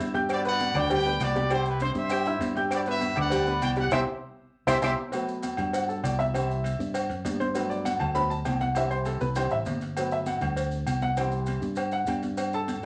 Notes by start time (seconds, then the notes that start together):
0.00 G2, high conga, maracas
0.14 G4 G5 G6, cowbell, low bongo, high conga, maracas
0.29 F#4 B4 D5, cowbell, high conga, low agogo, claves, maracas
0.45 B3 B4 D5 F#5 B5, high conga, maracas
0.59 cowbell, high conga, low agogo, maracas
0.74 D2 D4 D5 G5 D6, cowbell, high conga, low conga, low agogo, claves, maracas
0.90 G3 G4 B4 D5 G5, cowbell, high conga, low conga, low agogo, maracas
1.05 B3 B4 B5, high conga, maracas
1.19 C2 F#4 B4 D5, cowbell, high conga, low timbale, low agogo, claves, maracas
1.35 G3 G4 G5, cowbell, high conga, maracas
1.50 G3 E4 G4 C5 G5, cowbell, high conga, low agogo, claves, maracas
1.65 B4, high conga, maracas
1.80 C4 C5 C6, cowbell, high conga, low agogo, maracas
1.95 G2 G4 C5 E5, high conga, maracas
2.09 G4 G5 G6, cowbell, high conga, low agogo, claves, maracas
2.26 E4 E5 E6, cowbell, high conga, maracas
2.40 G2, cowbell, high conga, low agogo, maracas
2.56 G4 G5 G6, cowbell, high conga, maracas
2.71 F#4 B4 D5, cowbell, high conga, low agogo, claves, maracas
2.86 B3 B4 E5 B5, high conga, maracas
3.00 cowbell, high conga, low agogo, maracas
3.16 D2 D4 B4 D5 D6, cowbell, high conga, low conga, low agogo, claves, maracas
3.20 F#5
3.30 G3 G4 G5, cowbell, high conga, low conga, low agogo, maracas
3.47 B3 B4 B5, high conga, maracas
3.62 C2 G5, cowbell, high conga, low agogo, claves, maracas
3.76 G3 G4 G5, cowbell, high conga, maracas
3.80 F#5
3.91 C2 G4 C5 E5, cowbell, high conga, high timbale, claves, maracas
4.67 C2 G4 C5 E5, cowbell, high conga, high timbale, claves, maracas
4.82 C2 G4 C5 E5, cowbell, high conga, high timbale, claves, maracas
5.12 F#3 A3 B3, cowbell, high conga, low agogo, maracas
5.28 high conga, maracas
5.43 cowbell, high conga, low agogo, maracas
5.57 G2, cowbell, high conga, low conga, low agogo, maracas
5.73 F#5, cowbell, high conga, low agogo, maracas
5.89 A4, high conga, maracas
6.04 C2 D5, cowbell, high conga, low agogo, maracas
6.19 E5, cowbell, high conga, maracas
6.34 E3 G3 C4, cowbell, low agogo, maracas
6.50 high conga, maracas
6.64 cowbell, high conga, low agogo, maracas
6.79 G2, high conga, maracas
6.94 cowbell, high conga, low agogo, maracas
7.10 F#2, cowbell, high conga, maracas
7.25 G2, cowbell, high conga, low timbale, low agogo, maracas
7.40 C5, cowbell, high conga, maracas
7.54 F#3 A3 B3 B4, cowbell, high conga, low agogo, maracas
7.70 D5, high conga, maracas
7.85 F#5, cowbell, high conga, low agogo, maracas
8.00 D2 A5, cowbell, high conga, low conga, low agogo, maracas
8.14 F#3 A3 B3 B5, cowbell, high conga, low conga, low agogo, maracas
8.30 A5, high conga, maracas
8.45 C2 G5, cowbell, high conga, low timbale, low agogo, maracas
8.61 F#5, cowbell, high conga, maracas
8.75 E3 G3 C4 E5, cowbell, low agogo, maracas
8.91 C5, high conga, maracas
9.05 A4, cowbell, high conga, low agogo, maracas
9.21 C2 B4, high conga, maracas
9.35 E3 G3 C4 C5, cowbell, high conga, low agogo, maracas
9.50 A1 E5, cowbell, high conga, maracas
9.66 G1, cowbell, high conga, low timbale, low agogo, maracas
9.81 cowbell, maracas
9.97 F#3 A3 B3, cowbell, high conga, low agogo, maracas
10.12 E5, high conga, maracas
10.26 F#5, cowbell, high conga, low agogo, maracas
10.41 D2, cowbell, high conga, low conga, low agogo, maracas
10.56 cowbell, high conga, low agogo, maracas
10.71 high conga, maracas
10.86 C2, cowbell, high conga, low agogo, maracas
11.02 F#5, cowbell, high conga, maracas
11.17 E3 G3 C4 G5, cowbell, high conga, low agogo, maracas
11.31 maracas
11.46 cowbell, high conga, low agogo, maracas
11.61 G2, high conga, maracas
11.76 cowbell, high conga, low agogo, maracas
11.92 F#5, cowbell, high conga, maracas
12.07 G2 G5, cowbell, high conga, low agogo, maracas
12.23 cowbell, high conga, maracas
12.37 cowbell, high conga, low agogo, maracas
12.53 A4 A5, high conga, maracas
12.68 cowbell, high conga, low agogo, maracas